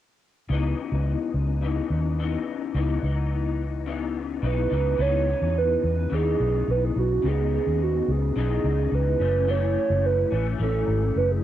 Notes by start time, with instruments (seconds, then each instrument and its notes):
0.49 fingered electric bass C#2, clean electric guitar C#3 E3 B3
0.53 clean electric guitar D#4
0.92 fingered electric bass C#2
1.34 fingered electric bass C#2
1.61 clean electric guitar C#3 E3 B3 D#4
1.90 fingered electric bass D#2
2.19 clean electric guitar C#3 E3 B3 D#4
2.74 fingered electric bass C#2, clean electric guitar C#3 E3 B3 D#4
3.02 fingered electric bass C#2, clean electric guitar E3 B3 D#4
3.86 clean electric guitar C#3 E3 B3 D#4
4.42 fingered electric bass B1, clean electric guitar C#3 E3 B3 D#4, soft synth lead B4
4.70 fingered electric bass C#2, clean electric guitar C#3 E3 B3 D#4
4.98 fingered electric bass C#2, clean electric guitar C#3 E3 B3, soft synth lead C#5
5.02 clean electric guitar D#4
5.42 fingered electric bass E2
5.58 soft synth lead B4
5.84 fingered electric bass E2, soft synth lead B4
6.10 fingered electric bass D#2, clean electric guitar C#3 E3 B3
6.14 clean electric guitar D#4, soft synth lead G#4
6.40 fingered electric bass B1
6.68 fingered electric bass B1, soft synth lead B4
6.85 soft synth lead G#4
6.96 fingered electric bass B1, soft synth lead F#4
7.22 fingered electric bass C#2, clean electric guitar C#3 B3
7.26 clean electric guitar D#4, soft synth lead G#4
7.55 soft synth lead G#4
7.67 fingered electric bass D#2
7.83 soft synth lead F#4
8.08 fingered electric bass C#2, soft synth lead G#4
8.36 fingered electric bass B1, clean electric guitar C#3 E3 B3 D#4
8.64 fingered electric bass C#2
8.92 fingered electric bass C#2, soft synth lead B4
9.19 fingered electric bass F#1, clean electric guitar E3 A3 C#4
9.47 clean electric guitar F#2 E3 A3 C#4, soft synth lead C#5
9.90 fingered electric bass F#1
10.06 soft synth lead B4
10.31 fingered electric bass A1, clean electric guitar E3 A3 C#4, soft synth lead B4
10.58 fingered electric bass A1, clean electric guitar F#2 E3 A3, soft synth lead A4
10.62 clean electric guitar C#4
10.88 fingered electric bass G#1
11.16 fingered electric bass F#1, soft synth lead B4
11.32 soft synth lead G#4